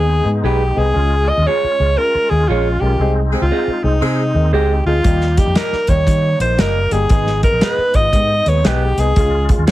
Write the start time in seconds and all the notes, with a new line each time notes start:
Already playing: D#2 G#3 B3 D#4 G#4
0.24 G#2 G#3 B3 D#4 G#4
0.43 B1 G#3 B3 D#4 G4 G#4 B4
0.75 C2 G#3 B3 D#4 G4 G#4
0.93 C#2 G#3 C#4 F4 G#4
1.27 G#3 C#4 F4 G#4 D#5
1.37 D#2
1.46 G#3 C#4 F4 G#4 C#5
1.64 muted fingered electric bass stroke
1.79 C#2 G#3 C#4 F4 G#4
1.97 G#3 C#4 F4 A#4
2.15 muted fingered electric bass stroke
2.30 D#2 G#3 C#4 F4 G#4
2.48 A#1 G#3 C#4 F4 G#4 C#5
2.81 B1 G#3 C#4 F4 G4 A#4
2.99 C2 G#3 C4 D#4 G#4
3.31 G#3 C4 D#4 G4 G#4
3.41 C#2 F4
3.50 G#3 C4 D#4 G#4 C5 D#5
3.67 muted fingered electric bass stroke
3.83 C2 G#3 C4 D#4 G#4
4.00 C3 G#3 C4 D#4 G#4
4.34 D#2 G#3 C4 D#4 A#4
4.52 C#2 G#3 C4 D#4 G4 G#4 C5 D#5
4.85 D2 G#3 C4 D#4 F4 G#4
5.04 D#2 G3 A#3 D#4 G4, kick, closed hi-hat
5.21 snare
5.37 G3 A#3 D#4 G4, kick, closed hi-hat
5.46 F2
5.55 G3 A#3 D#4 G4 A#4 D#5, snare, closed hi-hat
5.73 muted fingered electric bass stroke, snare
5.87 D#2 G3 A#3 D#4 G4 C#5, kick, closed hi-hat
6.07 D#3 G3 A#3 D#4 G4, kick, closed hi-hat
6.40 A#1 G3 A#3 D#4 A#4 C5, closed hi-hat
6.58 F#1 G3 A#3 D#4 G4 A#4 D#5, snare, closed hi-hat
6.91 G1 G3 A#3 D#4 G4 G#4, closed hi-hat
7.09 G#1 G#3 B3 D#4 G#4, kick, closed hi-hat
7.27 snare
7.43 G#3 B3 D#4 A#4, kick, closed hi-hat
7.52 A#1
7.61 G#3 B3 D#4 G#4 B4 D#5, snare, closed hi-hat
7.78 muted fingered electric bass stroke
7.94 G#1 G#3 B3 D#4 F4 D#5, kick, closed hi-hat
8.13 G#2 G#3 B3 D#4 G4, kick, closed hi-hat
8.46 D#2 G#3 B3 D#4 B4 C#5, closed hi-hat
8.64 B1 G#3 B3 D#4 G4 G#4 B4 D#5, snare, closed hi-hat
8.97 C2 G#3 B3 D#4 G#4, closed hi-hat
9.16 C#2 G#3 C#4 F4 G#4, kick, closed hi-hat
9.49 G#3 C#4 F4 G#4, kick, closed hi-hat
9.58 D#2
9.67 G#3 F4 G#4 C#5, snare, closed hi-hat